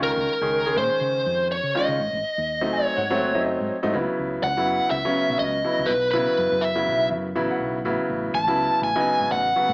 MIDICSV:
0, 0, Header, 1, 5, 480
1, 0, Start_track
1, 0, Tempo, 488202
1, 32, Time_signature, 4, 2, 24, 8
1, 9571, End_track
2, 0, Start_track
2, 0, Title_t, "Lead electric guitar"
2, 0, Program_c, 0, 29
2, 31, Note_on_c, 0, 70, 80
2, 759, Note_off_c, 0, 70, 0
2, 763, Note_on_c, 0, 72, 83
2, 1440, Note_off_c, 0, 72, 0
2, 1492, Note_on_c, 0, 73, 91
2, 1726, Note_on_c, 0, 75, 86
2, 1731, Note_off_c, 0, 73, 0
2, 2808, Note_off_c, 0, 75, 0
2, 2808, Note_on_c, 0, 73, 86
2, 3363, Note_off_c, 0, 73, 0
2, 4362, Note_on_c, 0, 78, 99
2, 4820, Note_off_c, 0, 78, 0
2, 4824, Note_on_c, 0, 76, 94
2, 5297, Note_off_c, 0, 76, 0
2, 5301, Note_on_c, 0, 75, 81
2, 5767, Note_on_c, 0, 71, 86
2, 5804, Note_off_c, 0, 75, 0
2, 6000, Note_off_c, 0, 71, 0
2, 6012, Note_on_c, 0, 71, 83
2, 6502, Note_on_c, 0, 76, 75
2, 6520, Note_off_c, 0, 71, 0
2, 6956, Note_off_c, 0, 76, 0
2, 8207, Note_on_c, 0, 81, 98
2, 8648, Note_off_c, 0, 81, 0
2, 8686, Note_on_c, 0, 80, 101
2, 9127, Note_off_c, 0, 80, 0
2, 9163, Note_on_c, 0, 78, 82
2, 9571, Note_off_c, 0, 78, 0
2, 9571, End_track
3, 0, Start_track
3, 0, Title_t, "Grand piano"
3, 0, Program_c, 1, 0
3, 0, Note_on_c, 1, 51, 81
3, 0, Note_on_c, 1, 56, 73
3, 0, Note_on_c, 1, 61, 73
3, 0, Note_on_c, 1, 65, 90
3, 303, Note_off_c, 1, 51, 0
3, 303, Note_off_c, 1, 56, 0
3, 304, Note_off_c, 1, 65, 0
3, 305, Note_off_c, 1, 61, 0
3, 407, Note_on_c, 1, 51, 72
3, 409, Note_on_c, 1, 56, 57
3, 410, Note_on_c, 1, 61, 58
3, 414, Note_on_c, 1, 68, 73
3, 604, Note_off_c, 1, 51, 0
3, 606, Note_off_c, 1, 56, 0
3, 606, Note_off_c, 1, 61, 0
3, 608, Note_off_c, 1, 68, 0
3, 648, Note_on_c, 1, 51, 59
3, 648, Note_on_c, 1, 56, 60
3, 650, Note_on_c, 1, 68, 77
3, 651, Note_on_c, 1, 61, 58
3, 1445, Note_off_c, 1, 51, 0
3, 1445, Note_off_c, 1, 56, 0
3, 1446, Note_off_c, 1, 68, 0
3, 1447, Note_off_c, 1, 61, 0
3, 1718, Note_on_c, 1, 51, 70
3, 1719, Note_on_c, 1, 61, 70
3, 1722, Note_on_c, 1, 56, 56
3, 1722, Note_on_c, 1, 65, 78
3, 1957, Note_off_c, 1, 51, 0
3, 1957, Note_off_c, 1, 61, 0
3, 1959, Note_off_c, 1, 56, 0
3, 1959, Note_off_c, 1, 65, 0
3, 2569, Note_on_c, 1, 57, 73
3, 2569, Note_on_c, 1, 63, 92
3, 2570, Note_on_c, 1, 54, 76
3, 2570, Note_on_c, 1, 60, 70
3, 2682, Note_on_c, 1, 80, 66
3, 2903, Note_off_c, 1, 80, 0
3, 2917, Note_on_c, 1, 78, 71
3, 2964, Note_off_c, 1, 57, 0
3, 2964, Note_off_c, 1, 63, 0
3, 2965, Note_off_c, 1, 54, 0
3, 2965, Note_off_c, 1, 60, 0
3, 3051, Note_on_c, 1, 54, 89
3, 3053, Note_on_c, 1, 66, 100
3, 3055, Note_on_c, 1, 57, 85
3, 3056, Note_on_c, 1, 60, 93
3, 3248, Note_off_c, 1, 54, 0
3, 3249, Note_off_c, 1, 66, 0
3, 3250, Note_off_c, 1, 57, 0
3, 3250, Note_off_c, 1, 60, 0
3, 3265, Note_off_c, 1, 78, 0
3, 3290, Note_on_c, 1, 54, 75
3, 3290, Note_on_c, 1, 57, 66
3, 3290, Note_on_c, 1, 76, 54
3, 3292, Note_on_c, 1, 60, 78
3, 3292, Note_on_c, 1, 63, 87
3, 3390, Note_off_c, 1, 76, 0
3, 3399, Note_on_c, 1, 75, 58
3, 3685, Note_off_c, 1, 54, 0
3, 3685, Note_off_c, 1, 57, 0
3, 3686, Note_off_c, 1, 60, 0
3, 3686, Note_off_c, 1, 63, 0
3, 3763, Note_on_c, 1, 57, 79
3, 3764, Note_on_c, 1, 54, 81
3, 3767, Note_on_c, 1, 63, 99
3, 3768, Note_on_c, 1, 60, 78
3, 3845, Note_off_c, 1, 75, 0
3, 3855, Note_off_c, 1, 54, 0
3, 3868, Note_on_c, 1, 64, 81
3, 3869, Note_on_c, 1, 54, 81
3, 3870, Note_on_c, 1, 49, 75
3, 3872, Note_on_c, 1, 59, 74
3, 3874, Note_off_c, 1, 57, 0
3, 3876, Note_off_c, 1, 60, 0
3, 3876, Note_off_c, 1, 63, 0
3, 4379, Note_off_c, 1, 64, 0
3, 4380, Note_off_c, 1, 49, 0
3, 4380, Note_off_c, 1, 54, 0
3, 4381, Note_off_c, 1, 59, 0
3, 4493, Note_on_c, 1, 49, 69
3, 4493, Note_on_c, 1, 59, 64
3, 4494, Note_on_c, 1, 54, 64
3, 4495, Note_on_c, 1, 64, 75
3, 4887, Note_off_c, 1, 49, 0
3, 4887, Note_off_c, 1, 54, 0
3, 4887, Note_off_c, 1, 59, 0
3, 4888, Note_off_c, 1, 64, 0
3, 4963, Note_on_c, 1, 49, 76
3, 4966, Note_on_c, 1, 61, 92
3, 4967, Note_on_c, 1, 54, 73
3, 4969, Note_on_c, 1, 59, 76
3, 5468, Note_off_c, 1, 49, 0
3, 5470, Note_off_c, 1, 54, 0
3, 5470, Note_off_c, 1, 61, 0
3, 5471, Note_off_c, 1, 59, 0
3, 5549, Note_on_c, 1, 54, 63
3, 5550, Note_on_c, 1, 49, 67
3, 5551, Note_on_c, 1, 64, 68
3, 5553, Note_on_c, 1, 59, 57
3, 5794, Note_off_c, 1, 49, 0
3, 5794, Note_off_c, 1, 54, 0
3, 5794, Note_off_c, 1, 64, 0
3, 5796, Note_off_c, 1, 59, 0
3, 6030, Note_on_c, 1, 59, 72
3, 6031, Note_on_c, 1, 49, 80
3, 6033, Note_on_c, 1, 54, 70
3, 6034, Note_on_c, 1, 64, 91
3, 6540, Note_off_c, 1, 59, 0
3, 6541, Note_off_c, 1, 49, 0
3, 6542, Note_off_c, 1, 54, 0
3, 6542, Note_off_c, 1, 64, 0
3, 6641, Note_on_c, 1, 49, 70
3, 6642, Note_on_c, 1, 54, 69
3, 6643, Note_on_c, 1, 59, 63
3, 6643, Note_on_c, 1, 64, 82
3, 7147, Note_off_c, 1, 49, 0
3, 7147, Note_off_c, 1, 54, 0
3, 7148, Note_off_c, 1, 59, 0
3, 7148, Note_off_c, 1, 64, 0
3, 7231, Note_on_c, 1, 54, 77
3, 7231, Note_on_c, 1, 59, 76
3, 7231, Note_on_c, 1, 76, 61
3, 7232, Note_on_c, 1, 49, 79
3, 7236, Note_on_c, 1, 64, 93
3, 7358, Note_off_c, 1, 76, 0
3, 7380, Note_on_c, 1, 78, 65
3, 7645, Note_off_c, 1, 54, 0
3, 7645, Note_off_c, 1, 59, 0
3, 7646, Note_off_c, 1, 49, 0
3, 7648, Note_off_c, 1, 64, 0
3, 7697, Note_off_c, 1, 78, 0
3, 7718, Note_on_c, 1, 64, 86
3, 7721, Note_on_c, 1, 59, 76
3, 7722, Note_on_c, 1, 54, 75
3, 7723, Note_on_c, 1, 49, 83
3, 8223, Note_off_c, 1, 64, 0
3, 8225, Note_off_c, 1, 54, 0
3, 8225, Note_off_c, 1, 59, 0
3, 8226, Note_off_c, 1, 49, 0
3, 8332, Note_on_c, 1, 54, 62
3, 8332, Note_on_c, 1, 64, 87
3, 8333, Note_on_c, 1, 49, 70
3, 8334, Note_on_c, 1, 59, 70
3, 8725, Note_off_c, 1, 49, 0
3, 8725, Note_off_c, 1, 54, 0
3, 8725, Note_off_c, 1, 64, 0
3, 8726, Note_off_c, 1, 59, 0
3, 8805, Note_on_c, 1, 49, 85
3, 8806, Note_on_c, 1, 54, 76
3, 8806, Note_on_c, 1, 59, 75
3, 8806, Note_on_c, 1, 63, 88
3, 9308, Note_off_c, 1, 49, 0
3, 9308, Note_off_c, 1, 54, 0
3, 9308, Note_off_c, 1, 59, 0
3, 9308, Note_off_c, 1, 63, 0
3, 9397, Note_on_c, 1, 54, 62
3, 9400, Note_on_c, 1, 66, 68
3, 9401, Note_on_c, 1, 59, 64
3, 9402, Note_on_c, 1, 49, 62
3, 9571, Note_off_c, 1, 49, 0
3, 9571, Note_off_c, 1, 54, 0
3, 9571, Note_off_c, 1, 59, 0
3, 9571, Note_off_c, 1, 66, 0
3, 9571, End_track
4, 0, Start_track
4, 0, Title_t, "Fretless electric bass"
4, 0, Program_c, 2, 35
4, 0, Note_on_c, 2, 37, 75
4, 126, Note_off_c, 2, 37, 0
4, 169, Note_on_c, 2, 37, 86
4, 263, Note_off_c, 2, 37, 0
4, 406, Note_on_c, 2, 37, 66
4, 754, Note_on_c, 2, 46, 73
4, 768, Note_off_c, 2, 37, 0
4, 874, Note_off_c, 2, 46, 0
4, 993, Note_on_c, 2, 49, 82
4, 1210, Note_off_c, 2, 49, 0
4, 1242, Note_on_c, 2, 41, 84
4, 1574, Note_off_c, 2, 41, 0
4, 1606, Note_on_c, 2, 49, 70
4, 1703, Note_off_c, 2, 49, 0
4, 1852, Note_on_c, 2, 49, 75
4, 1947, Note_off_c, 2, 49, 0
4, 1964, Note_on_c, 2, 32, 103
4, 2080, Note_off_c, 2, 32, 0
4, 2092, Note_on_c, 2, 32, 97
4, 2187, Note_off_c, 2, 32, 0
4, 2340, Note_on_c, 2, 39, 74
4, 2690, Note_off_c, 2, 39, 0
4, 2690, Note_on_c, 2, 36, 72
4, 2804, Note_off_c, 2, 36, 0
4, 2927, Note_on_c, 2, 44, 86
4, 3138, Note_off_c, 2, 44, 0
4, 3174, Note_on_c, 2, 30, 80
4, 3502, Note_off_c, 2, 30, 0
4, 3542, Note_on_c, 2, 44, 78
4, 3633, Note_off_c, 2, 44, 0
4, 3778, Note_on_c, 2, 44, 81
4, 3870, Note_off_c, 2, 44, 0
4, 3887, Note_on_c, 2, 37, 102
4, 4002, Note_off_c, 2, 37, 0
4, 4121, Note_on_c, 2, 37, 68
4, 4335, Note_off_c, 2, 37, 0
4, 4356, Note_on_c, 2, 37, 92
4, 4477, Note_off_c, 2, 37, 0
4, 4494, Note_on_c, 2, 42, 78
4, 4708, Note_off_c, 2, 42, 0
4, 4833, Note_on_c, 2, 37, 79
4, 4955, Note_off_c, 2, 37, 0
4, 5208, Note_on_c, 2, 35, 72
4, 5305, Note_off_c, 2, 35, 0
4, 5314, Note_on_c, 2, 37, 75
4, 5531, Note_off_c, 2, 37, 0
4, 5692, Note_on_c, 2, 37, 83
4, 5788, Note_off_c, 2, 37, 0
4, 5793, Note_on_c, 2, 35, 95
4, 6011, Note_off_c, 2, 35, 0
4, 6038, Note_on_c, 2, 47, 81
4, 6157, Note_off_c, 2, 47, 0
4, 6277, Note_on_c, 2, 42, 79
4, 6397, Note_off_c, 2, 42, 0
4, 6410, Note_on_c, 2, 42, 81
4, 6755, Note_on_c, 2, 35, 89
4, 6770, Note_off_c, 2, 42, 0
4, 6988, Note_on_c, 2, 42, 97
4, 7003, Note_off_c, 2, 35, 0
4, 7208, Note_off_c, 2, 42, 0
4, 7230, Note_on_c, 2, 33, 84
4, 7353, Note_off_c, 2, 33, 0
4, 7472, Note_on_c, 2, 35, 91
4, 7690, Note_off_c, 2, 35, 0
4, 7710, Note_on_c, 2, 33, 102
4, 7833, Note_off_c, 2, 33, 0
4, 7959, Note_on_c, 2, 33, 84
4, 8173, Note_off_c, 2, 33, 0
4, 8196, Note_on_c, 2, 33, 89
4, 8316, Note_off_c, 2, 33, 0
4, 8321, Note_on_c, 2, 37, 83
4, 8540, Note_off_c, 2, 37, 0
4, 8670, Note_on_c, 2, 33, 80
4, 8792, Note_off_c, 2, 33, 0
4, 9047, Note_on_c, 2, 32, 66
4, 9143, Note_off_c, 2, 32, 0
4, 9159, Note_on_c, 2, 33, 74
4, 9373, Note_off_c, 2, 33, 0
4, 9526, Note_on_c, 2, 45, 90
4, 9571, Note_off_c, 2, 45, 0
4, 9571, End_track
5, 0, Start_track
5, 0, Title_t, "Muted fretless electric bass strokes"
5, 5080, Note_on_c, 9, 29, 38
5, 5178, Note_off_c, 9, 29, 0
5, 6167, Note_on_c, 9, 29, 33
5, 6265, Note_off_c, 9, 29, 0
5, 8914, Note_on_c, 9, 29, 37
5, 9013, Note_off_c, 9, 29, 0
5, 9571, End_track
0, 0, End_of_file